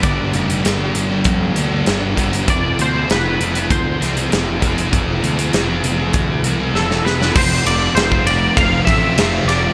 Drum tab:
CC |----------------|----------------|----------------|x---------------|
RD |----------------|----------------|----------------|--x-x-x-x-x-x-x-|
HH |x-xxx-x-x-x-x-xx|x-x-x-xxx-xxx-xx|x-xxx-x-x-x-----|----------------|
SD |----o-------o---|----o-----o-o---|----o-------oooo|----o-------o-o-|
BD |o-------o-----o-|o-------o-----o-|o-------o-------|o----o--o-o-----|